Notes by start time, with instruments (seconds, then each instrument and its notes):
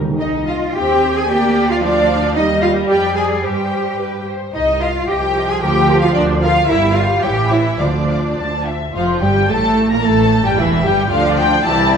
0.01 timpani D#3
0.10 timpani D#3
0.19 double bass section C2, cello section D#4, violin section D#5
0.47 cello section F4, violin section F5
0.75 double bass section D#2, viola section C4, cello section G4, violin section C5 G5
1.15 cello section G#4, violin section G#5
1.29 double bass section D2, viola section A#3, cello section G4, violin section D5 G5
1.70 cello section F4, violin section F5
1.82 viola section F3, cello section D4, violin section D5 F5
2.35 double bass section D#2, viola section G3, cello section D#4, violin section D#5
2.62 cello section F4, violin section F5
2.89 double bass section F2, cello section G4, violin section D5 G5
3.16 cello section G#4, violin section G#5
3.44 double bass section G2, viola section G3, cello section G4, violin section C5 G5
3.99 double bass section G2, violin section B4
4.27 violin section C5
4.54 double bass section C2, cello section D#4, violin section D#5
4.81 cello section F4, violin section D#5 F5
5.08 double bass section C2, viola section F3, cello section G4, violin section D#5 G5
5.37 violin section D#5
5.50 cello section G#4, violin section G#5
5.62 double bass section D2, timpani D3, cello section G4, violin section A#4 G5
5.89 violin section A#4
6.01 cello section F4, violin section F5
6.14 double bass section D2, cello section D4, violin section A#4 D5
6.41 cello section F4, violin section A#4 F5
6.68 double bass section G1, viola section G3, cello section E4, violin section A#4 E5
6.94 cello section F4, violin section A#4 F5
7.22 double bass section A1, viola section E3, cello section G4, violin section C#5 G5
7.50 cello section E4, violin section C#5 E5
7.79 double bass section D2, timpani D3, viola section F3, cello section D4, violin section D5 F5
8.08 violin section F5
8.37 double bass section D2, violin section A5
8.66 violin section E5
8.94 double bass section F1, cello section F2, viola section F3, violin section F4 F5
9.21 double bass section G1, cello section G2, viola section G3, violin section G4 G5
9.49 double bass section A1, cello section A2, viola section A3, violin section A4 A5
9.90 cello section A#2, viola section A#3, violin section A#4 A#5
10.04 double bass section A1, cello section A2, viola section A3, violin section A4 A5
10.44 cello section G2, viola section G3, violin section G4 G5
10.58 double bass section E1, cello section E2, viola section E3, violin section E4 E5
10.84 double bass section G1, cello section G2, viola section G3, violin section G4 G5
11.11 double bass section D2, cello section D3, viola section F3 D4, violin section F4 D5 F5
11.39 violin section G5
11.64 double bass section C2, cello section C3, viola section E3 E4, violin section G4 A5